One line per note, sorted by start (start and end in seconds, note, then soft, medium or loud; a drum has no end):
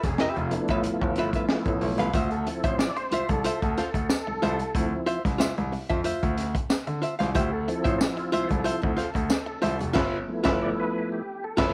0.03 0.17 F1 medium
0.03 0.21 G#4 medium
0.03 kick loud
0.03 snare soft
0.03 closed hi-hat medium
0.18 0.26 F1 soft
0.18 0.40 F4 medium
0.18 0.36 G4 medium
0.18 0.40 B4 medium
0.18 0.41 E5 loud
0.18 snare loud
0.36 0.50 F1 loud
0.36 0.53 F4 medium
0.36 closed hi-hat soft
0.51 2.10 F3 medium
0.51 2.10 A3 soft
0.51 2.10 B3 medium
0.51 0.70 D4 medium
0.51 2.11 E4 medium
0.51 muted hollow-body jazz guitar stroke soft
0.51 closed hi-hat medium
0.68 0.82 A1 loud
0.68 1.63 F4 medium
0.68 0.80 F4 medium
0.68 0.80 B4 medium
0.68 0.79 E5 medium
0.68 kick loud
0.68 closed hi-hat soft
0.83 0.91 G1 soft
0.83 muted hollow-body jazz guitar stroke soft
0.83 closed hi-hat medium
1.01 1.30 G1 loud
1.01 muted hollow-body jazz guitar stroke soft
1.01 kick medium
1.16 1.28 F4 medium
1.16 1.29 B4 medium
1.16 1.29 E5 medium
1.16 snare soft
1.16 closed hi-hat medium
1.33 1.45 F4 medium
1.33 1.45 B4 medium
1.33 1.45 E5 medium
1.33 kick medium
1.33 closed hi-hat medium
1.49 muted hollow-body jazz guitar stroke soft
1.49 snare loud
1.65 1.80 A1 medium
1.65 muted hollow-body jazz guitar stroke soft
1.65 kick loud
1.65 closed hi-hat soft
1.81 1.97 B1 medium
1.81 open hi-hat medium
1.98 2.12 C2 medium
1.98 2.12 F4 medium
1.98 2.12 B4 medium
1.98 2.12 F5 medium
1.98 snare soft
1.98 closed hi-hat medium
2.13 2.43 D2 loud
2.13 2.30 F4 loud
2.13 2.28 F4 medium
2.13 2.29 C5 medium
2.13 2.29 E5 medium
2.13 kick loud
2.13 closed hi-hat medium
2.31 2.65 A4 medium
2.31 closed hi-hat soft
2.47 2.91 F3 medium
2.47 2.91 C4 soft
2.47 2.91 E4 medium
2.47 muted hollow-body jazz guitar stroke soft
2.47 closed hi-hat medium
2.64 2.78 A1 medium
2.64 2.74 F4 medium
2.64 2.78 C5 medium
2.64 2.74 C5 medium
2.64 2.74 E5 medium
2.64 kick loud
2.64 closed hi-hat medium
2.79 2.97 D5 loud
2.79 muted hollow-body jazz guitar stroke soft
2.79 snare loud
2.79 tambourine medium
2.96 3.30 C5 medium
2.96 muted hollow-body jazz guitar stroke medium
2.96 closed hi-hat soft
3.11 3.18 C2 soft
3.11 3.26 F4 medium
3.11 3.27 C5 medium
3.11 3.27 E5 medium
3.11 closed hi-hat medium
3.29 3.43 C2 medium
3.29 4.88 A4 loud
3.29 muted hollow-body jazz guitar stroke soft
3.29 kick medium
3.29 closed hi-hat soft
3.44 3.59 F4 medium
3.44 3.59 C5 medium
3.44 3.60 E5 medium
3.44 closed hi-hat loud
3.62 3.76 D2 medium
3.62 muted hollow-body jazz guitar stroke soft
3.62 kick medium
3.62 closed hi-hat soft
3.77 3.89 F4 medium
3.77 3.89 C5 medium
3.77 3.89 F5 medium
3.77 snare soft
3.77 closed hi-hat medium
3.94 4.08 D2 medium
3.94 muted hollow-body jazz guitar stroke medium
3.94 kick medium
3.94 closed hi-hat medium
4.10 muted hollow-body jazz guitar stroke soft
4.10 snare loud
4.10 tambourine loud
4.27 4.33 C2 soft
4.27 muted hollow-body jazz guitar stroke soft
4.42 4.58 C2 loud
4.42 4.56 F4 medium
4.42 4.57 C5 medium
4.42 4.57 E5 medium
4.42 snare soft
4.42 closed hi-hat medium
4.59 muted hollow-body jazz guitar stroke soft
4.59 closed hi-hat medium
4.75 4.90 D2 loud
4.75 5.19 F3 medium
4.75 5.19 C4 medium
4.75 5.20 E4 medium
4.75 kick loud
4.75 closed hi-hat medium
5.06 5.21 F4 medium
5.06 5.21 C5 medium
5.06 5.22 E5 medium
5.06 closed hi-hat medium
5.25 5.39 C2 medium
5.25 kick loud
5.25 snare soft
5.25 closed hi-hat medium
5.38 5.48 C2 soft
5.38 5.53 F4 medium
5.38 5.54 C5 medium
5.38 5.54 E5 medium
5.38 snare loud
5.38 tambourine loud
5.57 5.71 C2 medium
5.57 closed hi-hat soft
5.72 muted hollow-body jazz guitar stroke soft
5.72 open hi-hat medium
5.89 6.04 F2 medium
5.89 6.00 F4 medium
5.89 6.00 C5 medium
5.89 6.00 E5 medium
5.89 kick medium
5.89 closed hi-hat soft
6.04 6.12 D2 soft
6.04 6.35 F4 medium
6.04 6.35 C5 medium
6.04 6.35 E5 medium
6.04 closed hi-hat loud
6.23 6.52 D2 loud
6.23 kick medium
6.23 closed hi-hat soft
6.37 muted hollow-body jazz guitar stroke soft
6.37 snare soft
6.37 closed hi-hat medium
6.55 muted hollow-body jazz guitar stroke medium
6.55 kick medium
6.55 closed hi-hat medium
6.70 muted hollow-body jazz guitar stroke soft
6.70 snare loud
6.70 tambourine loud
6.87 7.01 D3 medium
6.87 muted hollow-body jazz guitar stroke soft
6.87 closed hi-hat soft
7.02 7.13 F4 medium
7.02 7.14 C5 medium
7.02 7.14 E5 medium
7.02 closed hi-hat medium
7.19 7.34 C2 medium
7.19 7.30 F4 medium
7.19 7.30 C5 medium
7.19 7.29 F5 medium
7.19 snare soft
7.19 closed hi-hat medium
7.35 7.64 D2 loud
7.35 7.49 F4 loud
7.35 7.53 G4 loud
7.35 7.49 C5 medium
7.35 7.50 E5 medium
7.35 kick loud
7.35 closed hi-hat medium
7.53 7.83 A4 medium
7.68 8.64 F3 medium
7.68 8.64 C4 medium
7.68 8.65 E4 medium
7.68 muted hollow-body jazz guitar stroke soft
7.68 closed hi-hat medium
7.84 7.99 A1 medium
7.84 7.95 F4 medium
7.84 7.99 C5 loud
7.84 7.95 C5 medium
7.84 7.95 E5 medium
7.84 kick loud
7.84 closed hi-hat medium
7.98 8.07 A4 medium
7.98 muted hollow-body jazz guitar stroke soft
7.98 snare loud
7.98 tambourine loud
8.16 8.40 F4 medium
8.16 muted hollow-body jazz guitar stroke medium
8.16 closed hi-hat soft
8.32 8.40 C2 soft
8.32 8.47 F4 loud
8.32 8.47 C5 medium
8.32 8.47 E5 loud
8.32 closed hi-hat medium
8.42 8.50 C5 medium
8.48 8.64 C2 medium
8.48 10.08 A4 medium
8.48 muted hollow-body jazz guitar stroke soft
8.48 kick medium
8.48 closed hi-hat soft
8.64 8.95 F3 medium
8.64 8.95 C4 soft
8.64 8.95 E4 medium
8.64 8.79 F4 medium
8.64 8.79 C5 medium
8.64 8.80 E5 medium
8.64 closed hi-hat medium
8.82 8.97 D2 medium
8.82 muted hollow-body jazz guitar stroke medium
8.82 kick medium
8.97 9.08 F4 medium
8.97 9.09 C5 medium
8.97 9.09 F5 medium
8.97 snare soft
8.97 closed hi-hat medium
9.14 9.29 D2 medium
9.14 muted hollow-body jazz guitar stroke soft
9.14 kick medium
9.14 closed hi-hat soft
9.29 muted hollow-body jazz guitar stroke soft
9.29 snare loud
9.29 tambourine medium
9.46 muted hollow-body jazz guitar stroke medium
9.62 9.79 C2 medium
9.62 9.77 F4 medium
9.62 9.77 C5 loud
9.62 9.77 E5 medium
9.62 snare soft
9.62 closed hi-hat medium
9.79 9.94 F1 medium
9.79 muted hollow-body jazz guitar stroke medium
9.79 closed hi-hat medium
9.93 10.18 G1 loud
9.93 10.17 F4 loud
9.93 10.17 B4 loud
9.93 10.17 E5 loud
9.93 kick loud
9.93 snare loud
9.93 crash medium
10.28 11.22 F3 medium
10.28 11.22 A3 medium
10.28 11.22 B3 medium
10.28 11.23 E4 medium
10.44 10.67 G1 loud
10.44 10.66 F4 loud
10.44 10.67 B4 loud
10.44 10.67 E5 loud
10.44 kick loud
10.44 snare loud
10.62 10.70 D5 loud
10.80 11.09 B4 loud
11.12 11.45 G4 medium
11.44 11.73 A4 medium
11.57 11.73 G1 loud
11.57 11.73 F3 medium
11.57 11.73 A3 soft
11.57 11.73 B3 soft
11.57 11.73 E4 medium
11.57 11.73 F4 loud
11.57 11.73 B4 loud
11.57 11.73 E5 loud
11.57 kick loud
11.57 snare loud
11.57 crash medium